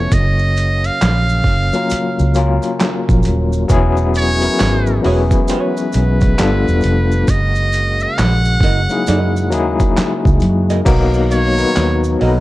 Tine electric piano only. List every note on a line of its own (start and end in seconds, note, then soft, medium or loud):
0.00 0.14 F3 medium
0.00 0.13 B3 medium
0.00 0.13 C#4 medium
0.00 0.13 E4 medium
0.00 0.14 A4 medium
1.73 2.23 F#3 medium
1.73 2.23 A#3 medium
1.73 2.24 C#4 medium
1.73 2.24 F4 medium
1.73 2.25 A#4 medium
2.35 3.41 F#3 medium
2.35 3.41 A#3 medium
2.35 3.41 C#4 medium
2.35 3.42 F4 medium
2.35 3.42 A#4 loud
3.68 4.22 F#3 loud
3.68 4.22 B3 loud
3.68 4.23 C#4 loud
3.68 4.23 E4 loud
3.68 4.23 G#4 loud
4.41 4.92 F#3 medium
4.41 4.92 B3 medium
4.41 4.92 C#4 medium
4.41 4.93 E4 medium
4.41 4.93 A#4 medium
5.02 6.37 F#3 medium
5.02 6.37 B3 medium
5.02 6.38 C#4 medium
5.02 6.39 E4 medium
5.02 5.13 G#4 medium
5.12 6.42 B4 medium
6.37 7.14 G3 medium
6.37 7.14 B3 medium
6.37 7.15 D4 medium
6.37 7.15 F4 medium
6.37 7.16 A4 medium
8.89 9.39 F#3 medium
8.89 9.40 A#3 medium
8.89 9.40 D#4 medium
8.89 9.41 E4 medium
8.89 9.41 G#4 medium
9.50 10.57 F#3 medium
9.50 10.57 A#3 medium
9.50 10.58 D#4 medium
9.50 10.58 E4 medium
9.50 10.58 G#4 medium
10.85 11.38 F#3 loud
10.85 11.39 A#3 loud
10.85 11.39 B3 loud
10.85 11.39 D#4 loud
10.85 11.40 A#4 loud
11.58 12.08 F#3 medium
11.58 12.09 B3 medium
11.58 12.09 D#4 medium
11.58 12.08 A#4 medium
11.58 12.10 B4 medium
12.19 12.40 F#3 medium
12.19 12.40 B3 medium
12.19 12.40 D#4 medium
12.19 12.29 A4 medium
12.29 12.40 B4 medium